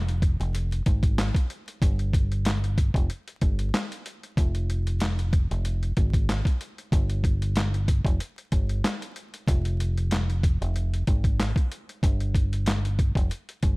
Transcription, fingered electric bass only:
0.00 0.36 F1 loud
0.40 0.81 F1 medium
0.87 1.30 G#1 loud
1.82 2.91 G1 loud
2.95 3.08 F1 medium
3.42 3.70 G1 medium
4.37 5.46 F1 loud
5.51 5.92 F1 medium
5.97 6.41 G#1 loud
6.93 8.01 G1 loud
8.05 8.18 F1 medium
8.52 8.81 G1 medium
9.48 10.57 F1 loud
10.61 11.03 F1 medium
11.08 11.52 G#1 loud
12.03 13.12 G1 loud
13.16 13.29 F1 medium
13.63 13.77 G1 loud

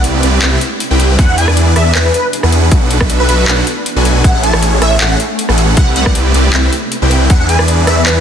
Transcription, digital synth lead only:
1.19 1.25 F#5 medium
1.29 1.35 F#5 medium
1.38 1.51 G#5 loud
1.76 1.90 E5 loud
1.95 2.02 B4 medium
2.05 2.11 B4 medium
2.14 2.28 B4 loud
3.20 3.27 B4 medium
3.29 3.58 B4 medium
4.24 4.31 F#5 medium
4.34 4.40 F#5 medium
4.43 4.57 A5 loud
4.82 4.96 E5 medium
5.01 5.07 F#5 medium
5.11 5.17 F#5 medium
5.77 5.91 F#5 medium
5.96 6.03 F#5 medium
6.06 6.12 F#5 medium
7.30 7.37 F#5 medium
7.40 7.46 F#5 medium
7.49 7.63 G#5 medium
7.88 8.01 E5 loud
8.07 8.13 B4 medium
8.16 8.20 B4 medium

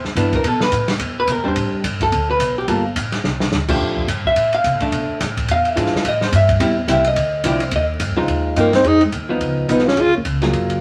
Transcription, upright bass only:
0.04 muted upright bass stroke soft
0.15 0.43 G2 medium
0.44 0.71 B2 medium
0.72 0.99 A2 medium
0.99 1.27 E2 medium
1.27 1.37 B2 medium
1.37 1.45 G#2 medium
1.46 1.55 E2 medium
1.56 1.71 A2 medium
1.72 muted upright bass stroke soft
1.84 2.11 G2 medium
2.12 2.39 D2 medium
2.39 2.67 B1 medium
2.68 2.95 G1 medium
2.96 3.23 A1 medium
3.24 3.51 C2 medium
3.51 3.79 D2 medium
3.80 4.07 F2 medium
4.08 4.35 G2 medium
4.36 4.63 A2 medium
4.64 4.74 C3 medium
4.74 4.82 A2 medium
4.83 4.91 F2 medium
4.92 5.07 B2 medium
5.09 muted upright bass stroke soft
5.20 5.48 A2 medium
5.48 5.76 E2 medium
5.76 5.92 G#2 medium
5.93 muted upright bass stroke soft
6.04 6.32 A2 medium
6.32 6.60 G2 loud
6.60 6.87 E2 medium
6.88 7.15 C2 loud
7.16 7.43 D2 medium
7.44 7.71 C2 loud
7.72 7.99 D#2 medium
8.00 8.11 G2 medium
8.09 8.17 D#2 medium
8.18 8.27 C#2 medium
8.28 8.55 D#2 medium
8.56 8.83 G2 medium
8.84 9.12 F2 medium
9.12 9.40 D#2 medium
9.41 9.68 C#2 medium
9.69 9.96 B1 medium
9.97 10.07 D#2 medium
10.07 10.16 C#2 medium
10.16 10.24 B1 medium
10.25 10.52 C#2 medium
10.53 10.80 F#1 medium

